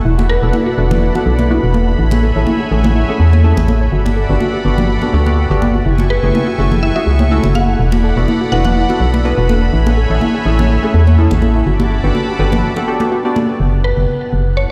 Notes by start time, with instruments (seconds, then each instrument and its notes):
Already playing: ambient pad E4 A4 F#5
0.05 fm bass E1, ambient pad D4, synth arpeggio sound E4, analog synth pad D5 F#5 B5
0.18 synth arpeggio sound F#4, muted conga, high conga
0.29 synth arpeggio sound A4, synth pluck B4
0.42 fm bass E1, synth stab B3 D4 E4 F#4 A4, synth arpeggio sound B4
0.53 synth arpeggio sound E4, high conga
0.67 synth arpeggio sound F#4
0.78 fm bass E1, synth stab B3 D4 E4 F#4 B4, synth arpeggio sound A4
0.91 synth arpeggio sound B4, ambient pad E5, high conga, low conga
1.02 synth arpeggio sound E4
1.15 synth stab B3 D4 E4 F#4 A4, synth arpeggio sound F#4, muted conga
1.26 fm bass B1, synth arpeggio sound A4
1.39 synth arpeggio sound B4, muted conga, high conga
1.50 synth stab B3 D4 E4 F#4 B4, synth arpeggio sound E4
1.63 fm bass E1, synth arpeggio sound F#4
1.74 synth arpeggio sound A4, high conga
1.88 synth arpeggio sound B4
1.99 fm bass A1, synth arpeggio sound E4, analog synth pad C#5 E5 G#5
2.11 synth arpeggio sound G#4, muted conga, high conga
2.23 synth arpeggio sound A4
2.36 fm bass A1, synth stab A3 C#4 E4 G#4 A4, synth arpeggio sound C#5
2.47 synth arpeggio sound E4, high conga
2.60 synth arpeggio sound G#4
2.71 fm bass A1, synth stab A3 C#4 E4 G#4 A4, synth arpeggio sound A4
2.84 synth arpeggio sound C#5, high conga, low conga
2.96 synth arpeggio sound E4
3.09 synth stab A3 C#4 E4 G#4 A4, synth arpeggio sound G#4
3.20 fm bass E2, synth arpeggio sound A4
3.33 synth arpeggio sound C#5, high conga
3.44 synth stab A3 C#4 E4 G#4 A4, synth arpeggio sound E4
3.57 fm bass A1, synth arpeggio sound G#4, muted conga
3.68 synth arpeggio sound A4, high conga
3.81 synth arpeggio sound C#5
3.92 fm bass G1, ambient pad B3, synth arpeggio sound F#4, analog synth pad D5 F#5 B5
4.05 synth arpeggio sound G4, muted conga, high conga
4.17 ambient pad G4, synth arpeggio sound A4
4.30 fm bass G1, synth stab B3 D4 F#4 G4 A4, synth arpeggio sound B4
4.40 synth arpeggio sound F#4, high conga
4.54 synth arpeggio sound G4
4.65 fm bass G1, synth stab B3 D4 F#4 G4 B4, synth arpeggio sound A4
4.78 synth arpeggio sound B4, ambient pad F#5, high conga, low conga
4.89 synth arpeggio sound F#4
5.02 synth stab B3 D4 F#4 G4 A4, synth arpeggio sound G4, muted conga
5.13 fm bass D2, synth stab B3 D4 F#4 G4 A4, synth arpeggio sound D5
5.26 synth stab B3 D4 F#4 G4 A4, synth arpeggio sound B4, muted conga, high conga
5.38 synth arpeggio sound F#4
5.51 fm bass G1, synth stab B3 D4 F#4 G4 D5, synth arpeggio sound F#4
5.62 synth arpeggio sound F#5, high conga
5.75 synth arpeggio sound F#4
5.86 fm bass F#1, ambient pad E4, synth arpeggio sound E4, analog synth pad E5 G#5 C#6
5.98 synth arpeggio sound F#4, muted conga, high conga
6.09 synth arpeggio sound G#4, ambient pad A4, synth pluck B4
6.23 fm bass F#1, synth stab A3 C#4 E4 F#4 G#4, synth arpeggio sound A4
6.34 synth arpeggio sound E4, high conga
6.47 synth arpeggio sound F#4
6.58 fm bass F#1, synth stab A3 C#4 E4 F#4 A4, synth arpeggio sound G#4
6.72 synth arpeggio sound A4, high conga, low conga
6.83 synth arpeggio sound E4, synth pluck E5
6.96 synth stab A3 C#4 E4 F#4 G#4, synth arpeggio sound F#4, synth pluck E5
7.07 fm bass C#2, synth arpeggio sound G#4
7.19 synth arpeggio sound C#5, high conga
7.31 synth stab A3 C#4 E4 F#4 A4, synth arpeggio sound E4
7.44 fm bass F#1, synth arpeggio sound F#4, muted conga
7.55 synth arpeggio sound G#4, synth pluck F#5, high conga
7.68 synth arpeggio sound A4
7.79 fm bass E1, ambient pad D4, synth arpeggio sound E4, analog synth pad D5 F#5 B5
7.92 synth arpeggio sound F#4, muted conga, high conga
8.04 synth arpeggio sound A4
8.17 fm bass E1, synth stab B3 D4 E4 F#4 A4, synth arpeggio sound B4
8.28 synth arpeggio sound E4, high conga
8.41 synth arpeggio sound F#4
8.52 fm bass E1, synth stab B3 D4 E4 F#4 B4, synth arpeggio sound A4, ambient pad E5, synth pluck F#5
8.65 synth arpeggio sound D5, synth pluck F#5, high conga, low conga
8.76 synth arpeggio sound E4
8.89 synth stab B3 D4 E4 F#4 A4, synth arpeggio sound F#4, muted conga
9.00 fm bass B1, synth arpeggio sound A4
9.14 synth arpeggio sound B4, muted conga, high conga
9.25 synth stab B3 D4 E4 F#4 B4, synth arpeggio sound E4
9.38 fm bass E1, synth arpeggio sound F#4
9.49 synth arpeggio sound A4, high conga
9.62 synth arpeggio sound B4
9.73 fm bass A1, ambient pad C#4, synth arpeggio sound E4, analog synth pad C#5 E5 G#5
9.86 synth arpeggio sound G#4, muted conga, high conga
9.97 synth arpeggio sound A4
10.10 fm bass A1, synth stab A3 C#4 E4 G#4 A4, synth arpeggio sound E5
10.21 synth arpeggio sound E4, high conga
10.35 synth arpeggio sound G#4
10.46 fm bass A1, synth stab A3 C#4 E4 G#4 A4, synth arpeggio sound A4
10.59 synth arpeggio sound C#5, high conga, low conga
10.70 synth arpeggio sound E4
10.83 synth stab A3 C#4 E4 G#4 A4, synth arpeggio sound G#4
10.94 fm bass E2, synth arpeggio sound A4
11.07 synth arpeggio sound C#5, high conga
11.18 synth stab A3 C#4 E4 G#4 A4, synth arpeggio sound E4
11.31 fm bass A1, synth arpeggio sound G#4, muted conga
11.42 synth arpeggio sound A4, high conga
11.55 synth arpeggio sound E5
11.66 fm bass G1, ambient pad B3, synth arpeggio sound F#4, analog synth pad F#5 A5 B5 D6
11.80 synth arpeggio sound G4, muted conga, high conga
11.91 synth arpeggio sound A4, ambient pad F#5
12.04 fm bass G1, synth stab B3 D4 F#4 G4 A4, synth arpeggio sound B4
12.15 synth arpeggio sound F#4, high conga
12.28 synth arpeggio sound G4
12.39 fm bass G1, synth stab B3 D4 F#4 G4 B4, synth arpeggio sound A4
12.52 synth arpeggio sound B4, high conga, low conga
12.63 synth arpeggio sound F#4
12.76 synth stab B3 D4 F#4 G4 A4, synth arpeggio sound G4, muted conga
12.88 synth stab B3 D4 F#4 G4 A4, synth arpeggio sound A4
13.00 synth stab B3 D4 F#4 G4 A4, synth arpeggio sound D5, muted conga, high conga
13.12 synth arpeggio sound F#4
13.25 synth stab B3 D4 F#4 G4 D5, synth arpeggio sound G4
13.36 synth arpeggio sound A4, high conga
13.49 synth arpeggio sound B4
13.60 fm bass F#1, ambient pad E4
13.76 ambient pad A4
13.84 synth pluck B4
13.97 fm bass F#1
14.33 fm bass F#1
14.57 synth pluck C#5